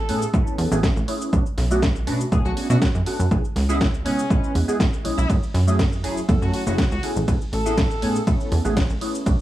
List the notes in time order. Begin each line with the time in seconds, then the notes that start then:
Already playing: A1 A4
0.09 A2 A3 B3 C#4 E4 G#4, open hi-hat
0.22 shaker
0.33 A3 B3 C#4 E4 A4, kick, shaker
0.47 shaker
0.58 E2, open hi-hat
0.71 A1 A3 B3 C#4 E4 G#4, shaker
0.83 kick, snare, shaker
0.96 A1, shaker
1.08 A3 B3 C#4 E4 G#4, open hi-hat
1.21 shaker
1.33 B1 A3 B3 C#4 D4 F#4, kick, shaker
1.46 shaker
1.58 B1, snare, open hi-hat
1.71 A3 B3 C#4 D4 F#4, shaker
1.82 kick, snare, shaker
1.96 shaker
2.07 B2 A3 B3 C#4 D4 F#4, open hi-hat
2.21 shaker
2.32 A1 A3 B3 C#4 D4 G#4, kick, shaker
2.45 B1 F#4, shaker
2.57 F#4, open hi-hat
2.70 B2 A3 B3 C#4 D4 F#4, shaker
2.82 F#4, kick, snare, shaker
2.95 F#2, shaker
3.06 A3 B3 C#4 D4 F#4, open hi-hat
3.20 F#2, shaker
3.31 C#2 G#3 B3 C#4 E4 G#4, kick, shaker
3.45 shaker
3.56 C#2, snare, open hi-hat
3.69 G#3 B3 C#4 E4 G#4, shaker
3.81 E4, kick, snare, shaker
3.94 shaker
4.05 C#3 G#3 B3 C#4 E4 G#4, open hi-hat
4.19 shaker
4.30 G#3 B3 C#4 E4 B4, kick, shaker
4.44 shaker
4.55 E2, open hi-hat
4.68 G#3 B3 C#4 E4 G#4, shaker
4.80 kick, snare, shaker
4.93 shaker
5.04 B1 G#3 B3 C#4 E4 G#4, open hi-hat
5.18 B1 E4, shaker
5.29 F#2 F#3 A3 C#4 E4 G#4, kick, ride, shaker
5.43 shaker
5.54 F#2, snare, open hi-hat
5.67 F#3 A3 C#4 E4 G#4, shaker
5.79 kick, snare, ride, shaker
5.93 shaker
6.04 F#1 F#3 A3 C#4 E4 G#4, open hi-hat
6.17 shaker
6.28 E2 F#3 A3 C#4 E4 A4, kick, ride, shaker
6.42 F#2 F#4, shaker
6.54 F#4, open hi-hat
6.66 F#1 F#3 A3 C#4 E4 F#4 G#4, shaker
6.78 F#4, kick, snare, ride, shaker
6.92 C#2 F#4, shaker
7.03 A3 B3 C#4 E4 G#4, open hi-hat
7.16 A1, shaker
7.28 A1 A3 B3 C#4 E4 G#4, kick, ride, shaker
7.41 shaker
7.53 A1 A4, open hi-hat
7.66 A3 B3 C#4 E4 G#4, shaker
7.78 kick, snare, ride, shaker
7.91 shaker
8.02 A2 A3 B3 C#4 E4 G#4, open hi-hat
8.16 shaker
8.27 A3 B3 C#4 E4 A4, kick, ride, shaker
8.40 shaker
8.52 E2, open hi-hat
8.65 A1 A3 B3 C#4 E4 G#4, shaker
8.77 kick, snare, ride, shaker
8.90 A1, shaker
9.01 A3 B3 C#4 E4 G#4, open hi-hat
9.15 shaker
9.26 B1 A3 B3 C#4 D4 F#4, kick, ride, shaker